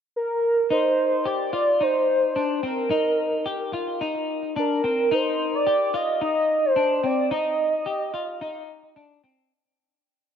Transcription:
0.16 A#4
0.70 D#4 C5
1.25 G4 D5
1.53 F4
1.81 D#4 C5
2.36 D4
2.63 C4 A#4
2.90 D#4
3.46 G4
3.73 F4
4.01 D#4
4.56 D4 A#4
4.84 C4
5.11 D#4 C5
5.55 D5
5.67 G4
5.94 F4 D#5
6.21 D#4 D#5
6.65 C5
6.76 D4
7.04 C4 D5
7.31 D#4 D#5
7.86 G4
8.14 F4
8.41 D#4
8.96 D4
9.24 C4

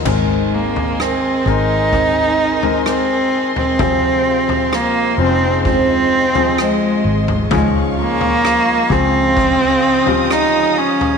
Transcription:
0.05 G#1 G#2 D#3 G#3 C4 D#4 A#4 D#5 G#5 C6, kick, floor tom, crash
0.54 A#3
0.76 floor tom
0.98 G#3 C4 D#4 A#4, cross-stick
1.45 G#1 G#3 C4 D#4 A#4, kick
1.92 G#3 C4 D#4 A#4, kick, floor tom
2.62 G#3 C4 A#4, floor tom
2.86 G#3 C4 D#4 A#4, cross-stick
3.56 C4, floor tom
3.79 F1 F2 C3 F3 G#3 C4 F4 G#4 C5 F5, kick, floor tom
4.49 floor tom
4.71 F3 G#3 A#3 C4 F4, cross-stick
5.18 F1 F3 C4 C#4
5.22 C4
5.26 D#4
5.65 F2 C3 F3 G#3 C4 F4 D#5, kick, floor tom
6.35 F3 C4 G#4, floor tom
6.58 F3 G#3 C4 F4, cross-stick
7.05 G#1
7.28 floor tom
7.50 C#2 G#2 C#3 F3 G#3 C#4 F4 G#4 F5 C#6, kick, floor tom
7.97 G#3 A#3 C#4 F4
8.21 floor tom
8.43 F3 G#3 F4, cross-stick
8.90 C#2 C#3 F3 C4 G#4, kick
9.37 C#3 F3 G#3 F4 D#6, kick, floor tom
10.06 F3 C#4 G4, floor tom
10.29 F3 G#3 C#4 D#4 F4, cross-stick
10.78 C#4
11.01 floor tom

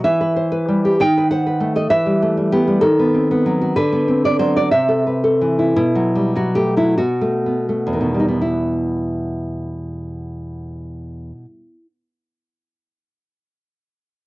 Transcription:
0.04 E3 E5
0.21 B4
0.36 C5
0.52 B4
0.69 G3
0.85 G4
1.00 D#3 G5
1.18 B4
1.31 C5 F#5
1.47 B4
1.61 A3
1.76 A4 D#5
1.90 E3 E5
2.06 G3
2.22 A3
2.37 G3
2.52 B3 G4
2.67 G3
2.81 D#3 A4
2.99 B3
3.14 C4
3.31 B3
3.46 F#3
3.61 F#4
3.76 D3 B4
3.92 B3
4.08 C4
4.24 B3 D5
4.39 F#3 C5
4.56 F#4 D5
4.71 C3 E5
4.88 A4
5.07 B4
5.24 A4
5.41 E3
5.59 E4
5.76 B2 E4
5.95 F#3
6.15 G3
6.35 F#3 F#4
6.55 A3 G4
6.77 F#3 E4
6.98 B2 F#4
7.21 A3
7.46 B3
7.69 A3
7.87 E2
7.93 D#3
8.01 B2
8.15 G3
8.20 D#4
8.28 B3
8.42 E4

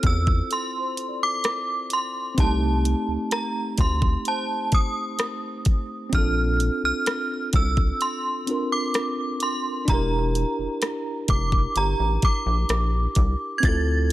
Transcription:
Already playing: C4 E4 F4 A4 C5
0.03 E2 E6, kick, closed hi-hat
0.27 kick
0.51 A4 C6, closed hi-hat
0.80 C5
0.97 closed hi-hat
1.08 D5
1.23 D6
1.44 cross-stick, closed hi-hat
1.90 C6, closed hi-hat
2.34 C2 C4 D#4, kick, closed hi-hat
2.40 A3 G4 A5
2.85 closed hi-hat
3.08 D2
3.31 A#5, cross-stick, closed hi-hat
3.78 D2 C6, kick, closed hi-hat
4.02 kick
4.25 C5 A5, closed hi-hat
4.72 D#6, kick, closed hi-hat
5.19 cross-stick, closed hi-hat
5.65 kick, closed hi-hat
6.09 A#1 C4 D4, kick, closed hi-hat
6.15 F4 A4 F6
6.60 closed hi-hat
6.83 C2 F6
7.06 cross-stick, closed hi-hat
7.53 C2 E6, kick, closed hi-hat
7.77 kick
8.01 C6, closed hi-hat
8.46 C4 D4 F4, closed hi-hat
8.51 A#4
8.72 D6
8.94 cross-stick, closed hi-hat
9.40 A#4 C6, closed hi-hat
9.85 E1 D4 E4, kick, closed hi-hat
9.90 G4 A#5
9.94 A#4
10.35 closed hi-hat
10.59 F1
10.82 cross-stick, closed hi-hat
11.28 F1 D6, kick, closed hi-hat
11.52 kick
11.76 G1 G4 A#5, closed hi-hat
11.99 A1
12.22 D6, kick, closed hi-hat
12.46 A#1
12.69 A#1, cross-stick, closed hi-hat
13.15 C2, kick, closed hi-hat
13.58 C4 G#6
13.63 D2 E4 F4 A6, kick, closed hi-hat
13.68 A4

